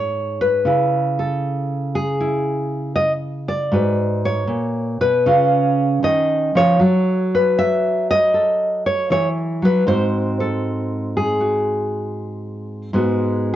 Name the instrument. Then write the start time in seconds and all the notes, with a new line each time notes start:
nylon-string guitar
Already playing: G#2 D#4 C#5
0.41 B4
0.65 C#3 E4
1.19 A4
1.95 G#4
2.21 E4
2.95 D#5
3.48 D5
3.72 G#2 F#4 B4
4.25 C#5
4.48 A#2
5.01 B2 B4
5.26 C#3 C#4 F4
6.03 D#3 D#5
6.55 F3 C#5
6.79 F#3 F#4 A4
7.35 B4
7.58 E5
8.11 D#5
8.34 A4
8.86 C#5
9.10 E3 C#5
9.62 F#3 B4
9.87 G#2 C4 F#4 C5
10.40 A4
11.17 G#4
11.40 F#4
12.93 G#2 G#3 B3 F#4